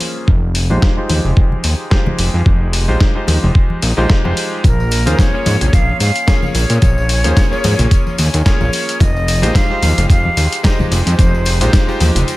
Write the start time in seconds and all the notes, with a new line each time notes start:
Already playing: A#3 C#4 F4 G#4 C5
0.00 open hi-hat
0.28 F1, kick, high conga
0.55 open hi-hat
0.70 A#1 G#3 D#4 F4 G4 C5, high conga
0.82 kick, snare
0.96 G#3 D#4 F4 G4 C5
1.09 D#2, open hi-hat, high conga
1.25 F1, low conga
1.37 F1, kick
1.52 high conga
1.64 D#2, open hi-hat
1.90 G#3 D#4 F4 G4 C5, kick, snare
2.06 high conga, low conga
2.19 F1, open hi-hat
2.34 F2
2.46 F1, kick, high conga
2.73 open hi-hat
2.88 A#1 G#3 D#4 F4 G4 C5, high conga
3.00 kick, snare
3.15 G#3 D#4 F4 G4 C5
3.28 D#2, open hi-hat, high conga
3.43 F1, low conga
3.55 kick
3.70 high conga
3.82 A#1, open hi-hat
3.97 A#1 G#3 D#4 F4 G4 C5
4.09 kick, snare
4.24 F1 G#3 D#4 F4 G4 C5, high conga
4.37 open hi-hat
4.64 A#1 A#4, kick, closed hi-hat, tambourine, high conga
4.80 tambourine
4.91 open hi-hat, tambourine
5.06 D#2 A#3 C#4 F4 G#4 C5, closed hi-hat, tambourine, high conga
5.19 C#5, kick, snare, closed hi-hat, tambourine
5.33 A#3 C#4 F4 G#4 C#5
5.46 G#2, open hi-hat, tambourine, high conga
5.61 A#1, closed hi-hat, tambourine, low conga
5.73 A#1 F5, kick, closed hi-hat, tambourine
5.89 high conga
6.00 G#2 F5, open hi-hat, tambourine
6.16 closed hi-hat, tambourine
6.27 A#3 C#4 F4 G#4 C#5, kick, snare, closed hi-hat, tambourine
6.42 tambourine, high conga, low conga
6.55 A#1 C#5, open hi-hat, tambourine
6.70 A#2, closed hi-hat, tambourine
6.82 A#1, kick, closed hi-hat, tambourine, high conga
6.98 tambourine
7.09 open hi-hat, tambourine
7.24 D#2 A#3 C#4 F4 G#4 C5, closed hi-hat, tambourine, high conga
7.37 kick, snare, closed hi-hat, tambourine
7.51 A#3 C#4 F4 G#4 C#5, tambourine
7.64 G#2, open hi-hat, tambourine, high conga
7.79 A#1, closed hi-hat, tambourine, low conga
7.91 kick, closed hi-hat, tambourine
8.07 tambourine, high conga
8.18 D#2, open hi-hat, tambourine
8.33 D#2, closed hi-hat, tambourine
8.45 A#3 C#4 F4 G#4 C#5, kick, snare, closed hi-hat, tambourine
8.60 A#1, tambourine, high conga
8.73 open hi-hat, tambourine
8.89 closed hi-hat, tambourine
9.00 F1 D#5, kick, closed hi-hat, tambourine, high conga
9.16 tambourine
9.28 open hi-hat, tambourine
9.42 A#1 G#3 D#4 F4 G4 C5, closed hi-hat, tambourine, high conga
9.55 F5, kick, snare, closed hi-hat, tambourine
9.69 G#3 D#4 F4 G4 C5
9.82 D#2, open hi-hat, tambourine, high conga
9.98 F1, closed hi-hat, tambourine, low conga
10.10 F1 F5, kick, closed hi-hat, tambourine
10.25 high conga
10.37 D#2, open hi-hat, tambourine
10.53 closed hi-hat, tambourine
10.63 G#3 D#4 F4 G4 C5 D#5, kick, snare, closed hi-hat, tambourine
10.79 tambourine, high conga, low conga
10.91 F1 C5, open hi-hat, tambourine
11.06 F2, closed hi-hat, tambourine
11.19 F1, kick, closed hi-hat, tambourine, high conga
11.35 tambourine
11.45 open hi-hat, tambourine
11.61 A#1 G#3 D#4 F4 G4 C5, closed hi-hat, tambourine, high conga
11.73 kick, snare, closed hi-hat, tambourine
11.87 G#3 D#4 F4 G4 C5, tambourine
12.00 D#2, open hi-hat, tambourine, high conga
12.15 F1, closed hi-hat, tambourine, low conga
12.28 closed hi-hat, tambourine